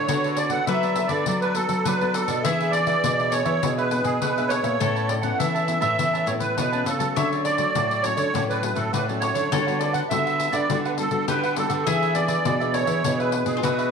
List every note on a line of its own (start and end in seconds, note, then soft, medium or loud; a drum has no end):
0.00 0.39 C#5 medium
0.09 0.59 D3 loud
0.09 0.65 D3 soft
0.09 0.37 B3 soft
0.09 0.22 D4 soft
0.09 0.64 F#4 medium
0.09 0.37 F#4 soft
0.09 0.23 A4 soft
0.09 0.37 A4 medium
0.09 0.23 B4 soft
0.09 0.23 D5 soft
0.09 pandeiro medium
0.24 0.36 A4 medium
0.24 0.36 B4 soft
0.24 0.37 D5 medium
0.24 pandeiro soft
0.37 0.53 D5 medium
0.37 muted cavaquinho stroke soft
0.37 pandeiro medium
0.50 0.92 B3 medium
0.50 0.92 F#4 medium
0.50 0.66 A4 soft
0.50 0.92 A4 medium
0.50 0.66 B4 medium
0.50 0.65 D5 medium
0.50 0.65 F#5 medium
0.50 pandeiro medium
0.66 1.24 D3 soft
0.66 1.06 F#3 medium
0.66 0.81 D4 soft
0.66 0.82 A4 soft
0.66 2.50 B4 medium
0.66 0.82 B4 soft
0.66 0.82 D5 medium
0.66 1.13 E5 medium
0.66 pandeiro medium
0.83 1.10 A4 soft
0.83 1.09 B4 medium
0.83 1.09 D5 medium
0.83 pandeiro soft
0.96 1.14 B3 soft
0.96 1.14 F#4 soft
0.96 1.14 A4 medium
0.96 pandeiro medium
1.07 1.24 D3 medium
1.07 1.25 A4 medium
1.07 1.25 B4 medium
1.07 1.40 D5 medium
1.07 1.25 D5 medium
1.07 pandeiro medium
1.26 1.83 D3 medium
1.26 1.65 F#3 medium
1.26 1.52 B3 medium
1.26 1.40 D4 soft
1.26 1.52 F#4 medium
1.26 1.41 A4 soft
1.26 1.52 A4 medium
1.26 1.41 B4 soft
1.26 1.41 D5 soft
1.26 pandeiro medium
1.41 1.55 A4 soft
1.41 1.56 B4 medium
1.41 1.55 B4 medium
1.41 1.55 D5 medium
1.41 pandeiro soft
1.55 1.95 B3 soft
1.55 1.95 F#4 soft
1.55 1.86 A4 medium
1.55 1.96 A4 medium
1.55 muted cavaquinho stroke soft
1.55 pandeiro medium
1.69 1.82 F#3 medium
1.69 pandeiro soft
1.84 2.42 D3 soft
1.84 2.24 F#3 medium
1.84 1.99 D4 medium
1.84 2.00 A4 medium
1.84 2.15 B4 medium
1.84 2.00 B4 medium
1.84 2.00 D5 medium
1.84 pandeiro medium
2.01 2.41 B3 medium
2.01 2.41 F#4 medium
2.01 2.41 A4 medium
2.01 2.14 A4 medium
2.01 2.14 B4 medium
2.01 2.14 D5 medium
2.01 pandeiro soft
2.13 2.29 D4 soft
2.13 2.45 A4 medium
2.13 2.29 A4 soft
2.13 2.28 B4 soft
2.13 2.27 D5 medium
2.13 pandeiro medium
2.28 2.41 B2 medium
2.28 2.44 A4 medium
2.28 2.43 B4 medium
2.28 2.43 D5 medium
2.28 pandeiro medium
2.43 3.01 E3 medium
2.43 2.95 E3 loud
2.43 2.84 B3 soft
2.43 2.85 D4 medium
2.43 2.59 D4 soft
2.43 4.77 G#4 medium
2.43 2.85 G#4 medium
2.43 2.59 G#4 soft
2.43 2.59 B4 soft
2.43 2.72 E5 medium
2.43 2.59 E5 soft
2.43 pandeiro medium
2.60 2.73 G#4 soft
2.60 2.74 B4 medium
2.60 2.73 E5 medium
2.60 pandeiro soft
2.71 3.33 D5 loud
2.71 muted cavaquinho stroke soft
2.71 pandeiro medium
2.87 3.27 B3 medium
2.87 3.28 D4 soft
2.87 3.28 G#4 medium
2.87 3.02 G#4 medium
2.87 3.02 B4 medium
2.87 3.02 E5 medium
2.87 pandeiro medium
3.04 3.60 B2 medium
3.04 3.42 B2 medium
3.04 3.18 D4 soft
3.04 3.18 G#4 medium
3.04 3.18 B4 soft
3.04 3.18 E5 medium
3.04 pandeiro medium
3.19 3.46 G#4 soft
3.19 3.45 B4 medium
3.19 3.44 E5 medium
3.19 pandeiro soft
3.30 3.57 B3 medium
3.30 3.58 D4 medium
3.30 3.58 G#4 medium
3.30 3.73 C#5 medium
3.30 pandeiro medium
3.45 3.59 E3 medium
3.45 3.61 G#4 medium
3.45 3.61 B4 soft
3.45 3.60 E5 medium
3.45 pandeiro medium
3.62 4.00 B2 medium
3.62 4.19 E3 medium
3.62 3.87 B3 soft
3.62 3.76 D4 soft
3.62 3.88 D4 medium
3.62 3.77 G#4 soft
3.62 3.88 G#4 medium
3.62 3.77 B4 soft
3.62 3.77 E5 soft
3.62 pandeiro medium
3.77 3.90 G#4 medium
3.77 4.05 B4 medium
3.77 3.90 B4 medium
3.77 3.90 E5 medium
3.77 pandeiro soft
3.91 4.20 B3 soft
3.91 4.20 D4 medium
3.91 4.20 G#4 medium
3.91 muted cavaquinho stroke soft
3.91 pandeiro medium
4.03 4.18 B2 medium
4.03 4.20 G#4 medium
4.03 pandeiro soft
4.20 4.59 B2 medium
4.20 4.78 B2 soft
4.20 4.35 D4 medium
4.20 4.36 G#4 medium
4.20 4.51 B4 medium
4.20 4.36 B4 medium
4.20 4.36 E5 medium
4.20 pandeiro medium
4.37 4.76 B3 medium
4.37 4.77 D4 medium
4.37 4.77 G#4 medium
4.37 4.49 G#4 medium
4.37 4.50 B4 medium
4.37 4.51 E5 medium
4.37 pandeiro soft
4.48 4.64 D4 soft
4.48 4.63 G#4 medium
4.48 4.63 B4 soft
4.48 5.11 C#5 medium
4.48 4.62 E5 medium
4.48 pandeiro medium
4.63 4.77 A#2 medium
4.63 4.79 G#4 soft
4.63 4.79 B4 medium
4.63 4.78 E5 medium
4.63 pandeiro medium
4.80 5.31 A2 loud
4.80 5.37 A2 soft
4.80 5.20 E3 soft
4.80 5.20 B3 medium
4.80 5.21 C#4 medium
4.80 4.94 A4 soft
4.80 6.83 A4 medium
4.80 4.95 B4 soft
4.80 4.94 C#5 soft
4.80 4.94 A5 soft
4.80 pandeiro medium
4.96 5.08 B4 medium
4.96 5.08 C#5 soft
4.96 5.08 A5 medium
4.96 pandeiro soft
5.07 5.14 D5 medium
5.07 muted cavaquinho stroke soft
5.07 pandeiro medium
5.21 5.39 E3 medium
5.21 5.63 B3 medium
5.21 5.64 C#4 medium
5.21 5.37 B4 medium
5.21 5.38 C#5 soft
5.21 5.38 F#5 medium
5.21 5.37 A5 medium
5.21 pandeiro soft
5.38 5.77 E3 medium
5.38 5.67 E3 medium
5.38 5.53 A4 soft
5.38 5.53 B4 medium
5.38 5.53 C#5 soft
5.38 5.79 E5 medium
5.38 5.53 A5 medium
5.38 pandeiro medium
5.54 5.80 B4 medium
5.54 5.81 C#5 medium
5.54 5.79 A5 medium
5.54 pandeiro soft
5.68 5.86 E3 soft
5.68 5.86 B3 medium
5.68 5.86 C#4 medium
5.68 pandeiro medium
5.80 5.95 A2 medium
5.80 5.96 B4 medium
5.80 5.96 C#5 soft
5.80 6.28 E5 medium
5.80 5.96 A5 medium
5.80 pandeiro medium
5.98 6.54 A2 medium
5.98 6.23 E3 medium
5.98 6.24 E3 medium
5.98 6.23 B3 medium
5.98 6.24 C#4 medium
5.98 6.12 A4 soft
5.98 6.12 B4 soft
5.98 6.12 C#5 soft
5.98 6.12 A5 medium
5.98 pandeiro medium
6.13 6.27 B4 medium
6.13 6.26 C#5 medium
6.13 6.27 A5 medium
6.13 pandeiro soft
6.26 6.54 A2 medium
6.26 6.55 E3 soft
6.26 6.55 B3 soft
6.26 6.55 C#4 medium
6.26 6.34 C#5 medium
6.26 muted cavaquinho stroke soft
6.26 pandeiro medium
6.40 6.56 B4 medium
6.40 pandeiro medium
6.57 6.84 B2 medium
6.57 6.72 E3 medium
6.57 6.71 A4 medium
6.57 6.88 B4 medium
6.57 6.71 B4 medium
6.57 6.71 C#5 medium
6.57 6.71 A5 medium
6.57 pandeiro medium
6.72 6.97 E3 medium
6.72 6.98 B3 medium
6.72 6.98 C#4 medium
6.72 6.85 B4 medium
6.72 6.85 C#5 soft
6.72 6.86 A5 medium
6.72 pandeiro soft
6.85 7.13 C#3 medium
6.85 7.16 A4 medium
6.85 7.00 A4 soft
6.85 6.98 B4 soft
6.85 6.99 C#5 soft
6.85 6.98 A5 medium
6.85 pandeiro medium
6.99 7.54 F#3 medium
6.99 7.54 A3 medium
6.99 7.55 C#4 medium
6.99 7.14 B4 soft
6.99 7.14 C#5 soft
6.99 7.14 A5 medium
6.99 pandeiro medium
7.16 7.72 D3 soft
7.16 7.67 D3 loud
7.16 7.30 F#4 soft
7.16 7.30 A4 soft
7.16 9.59 C#5 medium
7.16 7.30 C#5 soft
7.16 7.31 D5 soft
7.16 7.29 E5 medium
7.16 pandeiro medium
7.32 7.44 A4 soft
7.32 7.44 C#5 medium
7.32 7.44 D5 medium
7.32 pandeiro soft
7.44 8.06 D5 medium
7.44 muted cavaquinho stroke soft
7.44 pandeiro medium
7.57 7.99 F#3 medium
7.57 7.99 A3 medium
7.57 7.73 A4 soft
7.57 7.73 C#5 medium
7.57 7.72 D5 medium
7.57 pandeiro medium
7.75 8.31 A2 medium
7.75 8.13 A2 medium
7.75 7.89 F#4 soft
7.75 7.89 A4 medium
7.75 7.89 C#5 soft
7.75 7.89 D5 soft
7.75 pandeiro medium
7.91 8.17 A4 soft
7.91 8.16 C#5 medium
7.91 8.16 D5 medium
7.91 pandeiro soft
8.02 8.29 F#3 soft
8.02 8.29 A3 medium
8.02 8.29 C#4 medium
8.02 8.44 C#5 medium
8.02 pandeiro medium
8.17 8.30 D3 medium
8.17 8.32 A4 soft
8.17 8.32 C#5 medium
8.17 8.31 D5 medium
8.17 pandeiro medium
8.34 8.71 A2 medium
8.34 8.90 D3 medium
8.34 8.59 F#3 medium
8.34 8.59 A3 medium
8.34 8.59 C#4 medium
8.34 8.48 F#4 soft
8.34 8.48 A4 soft
8.34 8.48 C#5 soft
8.34 8.48 D5 soft
8.34 pandeiro medium
8.49 8.62 A4 medium
8.49 8.79 B4 medium
8.49 8.62 C#5 medium
8.49 8.62 D5 medium
8.49 pandeiro soft
8.62 8.90 F#3 medium
8.62 8.91 A3 soft
8.62 8.91 C#4 soft
8.62 muted cavaquinho stroke soft
8.62 pandeiro medium
8.75 8.89 A2 medium
8.75 8.92 A4 medium
8.75 pandeiro soft
8.92 9.30 A2 medium
8.92 9.49 A2 soft
8.92 9.06 F#4 medium
8.92 9.07 A4 medium
8.92 9.06 B4 medium
8.92 9.07 C#5 medium
8.92 9.07 D5 medium
8.92 pandeiro medium
9.08 9.48 F#3 medium
9.08 9.48 A3 medium
9.08 9.48 C#4 medium
9.08 9.20 A4 medium
9.08 9.21 C#5 medium
9.08 9.21 D5 medium
9.08 pandeiro soft
9.20 9.35 F#4 soft
9.20 9.34 A4 soft
9.20 9.82 C#5 medium
9.20 9.34 C#5 soft
9.20 9.33 D5 medium
9.20 pandeiro medium
9.34 9.48 D3 medium
9.34 9.50 A4 soft
9.34 9.49 C#5 soft
9.34 9.49 D5 medium
9.34 pandeiro soft
9.51 10.02 D3 loud
9.51 10.08 D3 medium
9.51 9.61 G3 soft
9.51 9.61 B3 medium
9.51 9.65 D4 soft
9.51 9.61 F#4 medium
9.51 9.65 G4 soft
9.51 11.28 A4 medium
9.51 9.66 B4 soft
9.51 9.66 F#5 soft
9.51 pandeiro medium
9.67 10.06 G3 medium
9.67 10.06 B3 medium
9.67 10.07 F#4 medium
9.67 9.78 G4 soft
9.67 9.78 B4 medium
9.67 9.79 F#5 medium
9.67 pandeiro soft
9.78 9.93 D5 medium
9.78 muted cavaquinho stroke soft
9.78 pandeiro medium
9.93 10.09 G4 medium
9.93 10.08 B4 medium
9.93 10.00 F#5 medium
9.93 10.08 F#5 medium
9.93 pandeiro soft
10.09 10.48 D3 medium
10.09 10.66 D3 soft
10.09 10.64 G3 soft
10.09 10.65 B3 soft
10.09 10.24 D4 medium
10.09 10.65 F#4 medium
10.09 10.24 G4 medium
10.09 10.24 B4 soft
10.09 10.55 E5 medium
10.09 10.25 F#5 medium
10.09 pandeiro medium
10.26 10.53 G4 soft
10.26 10.52 B4 medium
10.26 10.51 F#5 medium
10.26 pandeiro soft
10.40 pandeiro medium
10.52 10.66 D3 medium
10.52 10.68 G4 medium
10.52 10.67 B4 medium
10.52 10.80 D5 medium
10.52 10.67 F#5 medium
10.52 pandeiro medium
10.69 11.25 D3 medium
10.69 11.07 D3 medium
10.69 10.86 G3 soft
10.69 10.87 B3 medium
10.69 10.83 D4 soft
10.69 10.87 F#4 medium
10.69 10.84 G4 soft
10.69 10.84 B4 soft
10.69 10.84 F#5 medium
10.69 pandeiro medium
10.85 10.97 G4 medium
10.85 10.91 B4 medium
10.85 10.97 B4 medium
10.85 10.97 F#5 medium
10.85 pandeiro soft
10.98 11.07 G3 medium
10.98 11.07 B3 soft
10.98 11.07 F#4 medium
10.98 11.26 A4 medium
10.98 muted cavaquinho stroke soft
10.98 pandeiro medium
11.11 11.25 D3 medium
11.11 11.51 G3 medium
11.11 11.51 B3 soft
11.11 11.52 F#4 medium
11.11 pandeiro soft
11.28 11.84 D3 soft
11.28 11.66 D3 medium
11.28 11.41 D4 medium
11.28 11.86 G4 medium
11.28 11.42 G4 medium
11.28 11.55 B4 medium
11.28 11.42 B4 medium
11.28 11.42 F#5 medium
11.28 pandeiro medium
11.43 11.56 G4 medium
11.43 11.56 B4 medium
11.43 11.56 F#5 medium
11.43 pandeiro soft
11.56 11.84 G3 soft
11.56 11.84 B3 medium
11.56 11.70 D4 soft
11.56 11.84 F#4 medium
11.56 11.70 G4 medium
11.56 11.87 A4 medium
11.56 11.69 B4 soft
11.56 11.68 F#5 medium
11.56 pandeiro medium
11.69 11.83 D3 medium
11.69 11.85 G4 medium
11.69 11.84 B4 medium
11.69 11.84 F#5 medium
11.69 pandeiro medium
11.86 12.42 E3 medium
11.86 12.37 E3 medium
11.86 12.11 B3 soft
11.86 12.00 D4 soft
11.86 12.11 D4 medium
11.86 13.56 G#4 medium
11.86 12.00 G#4 soft
11.86 12.12 G#4 soft
11.86 12.00 B4 soft
11.86 12.17 E5 medium
11.86 12.00 E5 soft
11.86 pandeiro medium
12.02 12.13 G#4 soft
12.02 12.14 B4 medium
12.02 12.14 E5 medium
12.02 pandeiro soft
12.14 12.43 B3 medium
12.14 12.43 D4 soft
12.14 12.43 G#4 medium
12.14 12.76 D5 medium
12.14 muted cavaquinho stroke soft
12.14 pandeiro medium
12.28 12.43 G#4 medium
12.28 12.43 B4 medium
12.28 12.43 E5 medium
12.28 pandeiro medium
12.45 13.01 B2 medium
12.45 12.83 B2 medium
12.45 12.59 D4 soft
12.45 12.59 G#4 medium
12.45 12.59 B4 medium
12.45 12.59 E5 medium
12.45 pandeiro medium
12.60 13.00 B3 medium
12.60 13.00 D4 medium
12.60 13.00 G#4 medium
12.60 12.87 G#4 soft
12.60 12.86 B4 medium
12.60 12.85 E5 medium
12.60 pandeiro soft
12.73 13.19 C#5 medium
12.73 pandeiro medium
12.87 13.01 E3 medium
12.87 13.02 G#4 medium
12.87 13.02 B4 medium
12.87 13.01 E5 medium
12.87 pandeiro soft
13.04 13.42 B2 medium
13.04 13.60 E3 medium
13.04 13.43 B3 medium
13.04 13.17 D4 soft
13.04 13.43 D4 medium
13.04 13.18 G#4 soft
13.04 13.44 G#4 medium
13.04 13.18 B4 soft
13.04 13.18 E5 soft
13.04 pandeiro medium
13.19 13.32 G#4 medium
13.19 13.46 B4 medium
13.19 13.32 B4 medium
13.19 13.32 E5 medium
13.19 pandeiro soft
13.32 muted cavaquinho stroke soft
13.32 pandeiro medium
13.45 13.59 B2 medium
13.45 13.86 B3 medium
13.45 13.86 D4 soft
13.45 13.60 G#4 medium
13.45 13.86 G#4 medium
13.45 pandeiro medium
13.57 13.63 F4 medium
13.63 13.91 B2 medium
13.63 13.76 D4 medium
13.63 13.91 F#4 medium
13.63 13.76 G#4 medium
13.63 13.91 B4 medium
13.63 13.77 B4 medium
13.63 13.77 E5 medium
13.63 pandeiro medium
13.78 13.90 G#4 medium
13.78 13.91 B4 medium
13.78 13.91 E5 medium
13.78 pandeiro soft